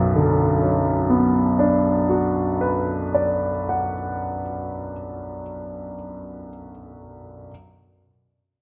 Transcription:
0.00 2.17 B1 medium
0.00 2.59 F#2 medium
0.00 3.02 B2 medium
0.16 3.48 D3 soft
0.61 3.94 F#3 soft
1.09 4.42 B3 soft
1.59 4.92 D4 soft
2.09 5.42 F#4 soft
2.61 5.94 B4 soft
3.14 6.47 D5 soft
3.69 6.69 F#5 soft

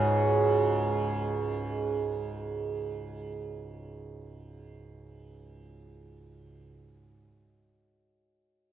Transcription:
0.00 6.62 C#2 medium
0.00 7.08 G#2 medium
0.00 6.13 C#3 medium
0.00 1.89 C#4 medium
0.00 1.33 D#4 medium
0.00 0.69 F#4 loud

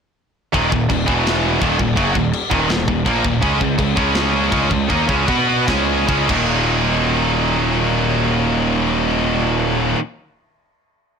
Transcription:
0.53 0.71 D#1 medium
0.53 0.69 D#2 medium
0.53 0.70 A#2 medium
0.53 0.71 D#3 loud
0.53 kick medium
0.53 crash soft
0.70 0.88 D#1 medium
0.70 0.85 D#2 medium
0.70 0.85 A#2 medium
0.70 kick medium
0.89 1.06 D#1 medium
0.89 1.04 D#2 medium
0.89 1.04 A#2 medium
0.89 kick medium
0.89 crash medium
1.06 1.58 E1 medium
1.06 1.60 E2 medium
1.06 1.60 B2 medium
1.06 1.61 E3 loud
1.06 kick loud
1.27 snare loud
1.27 crash medium
1.61 1.78 D#1 medium
1.61 1.78 D#2 medium
1.61 1.78 A#2 medium
1.61 1.79 D#3 medium
1.61 kick loud
1.61 crash medium
1.79 1.96 D#1 medium
1.79 1.93 D#2 medium
1.79 1.94 A#2 medium
1.79 kick loud
1.96 2.14 F#1 medium
1.96 2.14 F#2 loud
1.96 2.14 C#3 loud
1.96 2.14 F#3 loud
1.96 kick medium
1.96 crash medium
2.14 2.32 D#1 medium
2.14 2.29 D#2 medium
2.14 2.30 A#2 medium
2.14 kick medium
2.33 crash medium
2.51 2.68 D#1 loud
2.51 2.68 D#2 loud
2.51 2.69 A#2 medium
2.51 2.69 D#3 loud
2.51 kick loud
2.69 2.86 D#1 medium
2.69 2.84 D#2 medium
2.69 2.84 A#2 medium
2.69 snare loud
2.69 crash medium
2.88 3.04 D#1 medium
2.88 3.02 D#2 medium
2.88 3.03 A#2 medium
2.88 kick medium
3.06 3.23 A#1 loud
3.06 3.23 A#2 medium
3.06 3.24 F3 medium
3.06 3.24 A#3 loud
3.06 kick loud
3.06 crash medium
3.24 3.41 D#1 medium
3.24 3.38 D#2 medium
3.24 3.39 A#2 medium
3.24 kick loud
3.42 3.59 C#2 loud
3.42 3.59 C#3 loud
3.42 3.59 G#3 loud
3.42 3.60 C#4 loud
3.42 kick medium
3.42 crash medium
3.60 3.78 C#2 medium
3.60 3.74 C#3 medium
3.60 3.75 G#3 medium
3.60 kick medium
3.77 3.95 C#2 medium
3.77 3.92 C#3 medium
3.77 3.93 G#3 medium
3.77 kick medium
3.77 crash medium
3.95 4.48 C#2 medium
3.95 4.49 C#3 medium
3.95 4.50 G#3 loud
3.95 4.50 C#4 medium
3.95 kick loud
4.15 snare loud
4.15 crash medium
4.51 4.69 C#2 medium
4.51 4.69 C#3 loud
4.51 4.69 G#3 loud
4.51 4.70 C#4 loud
4.51 kick loud
4.51 crash medium
4.70 4.88 C#2 medium
4.70 4.85 C#3 medium
4.70 4.85 G#3 medium
4.70 kick loud
4.88 5.07 D#2 loud
4.88 5.06 D#3 loud
4.88 5.07 A#3 loud
4.88 5.07 D#4 loud
4.88 kick medium
4.88 crash soft
5.07 5.27 C#2 medium
5.07 5.26 C#3 medium
5.07 5.26 G#3 loud
5.07 5.26 C#4 loud
5.07 kick loud
5.26 5.65 B2 loud
5.26 5.66 B3 medium
5.26 5.66 F#4 medium
5.26 5.66 B4 loud
5.26 kick loud
5.26 crash medium
5.66 6.05 C#2 medium
5.66 6.05 C#3 medium
5.66 6.05 G#3 loud
5.66 6.06 C#4 loud
5.66 kick loud
5.66 snare loud
5.66 crash medium
6.06 6.27 C#2 loud
6.06 6.27 C#3 medium
6.06 6.28 G#3 medium
6.06 6.28 C#4 loud
6.06 kick loud
6.06 crash medium
6.27 9.93 D#1 loud
6.27 9.95 D#2 medium
6.27 9.96 A#2 loud
6.27 9.97 D#3 loud
6.27 9.98 F#3 loud
6.27 9.98 A#3 loud
6.27 kick loud
6.27 crash loud
6.31 9.99 D#4 loud

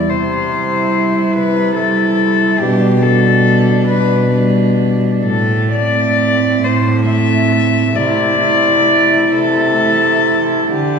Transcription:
0.00 0.11 D5 medium
0.08 1.19 C3 medium
0.08 1.36 C5 medium
0.51 1.74 G3 medium
0.51 1.73 E4 medium
1.33 2.45 C3 medium
1.33 1.74 B4 medium
1.75 2.59 G3 soft
1.75 2.60 E4 medium
1.75 2.61 A4 medium
2.59 3.73 B2 medium
2.59 3.03 G3 medium
2.59 3.04 D4 medium
2.59 3.04 G4 medium
3.03 4.29 G3 medium
3.03 4.29 D4 medium
3.03 3.87 A4 medium
3.87 5.07 B2 medium
3.87 4.30 B4 medium
4.32 5.23 G3 medium
4.32 5.23 D4 medium
5.25 6.47 A2 medium
5.25 5.69 A4 medium
5.72 7.05 A3 medium
5.72 7.05 C4 medium
5.72 6.65 D5 loud
6.63 7.79 A2 medium
6.63 7.05 C5 medium
7.06 7.93 A3 medium
7.06 7.94 C4 medium
7.06 7.97 E5 loud
7.95 9.15 C3 medium
7.95 8.40 A3 medium
7.95 8.40 E4 medium
7.95 9.33 D5 loud
8.41 9.74 A3 medium
8.41 9.76 E4 medium
9.31 10.53 C3 medium
9.31 10.69 A4 loud
9.77 10.68 A3 medium
9.77 10.69 E4 medium
10.69 10.99 D3 medium
10.69 10.99 G4 medium

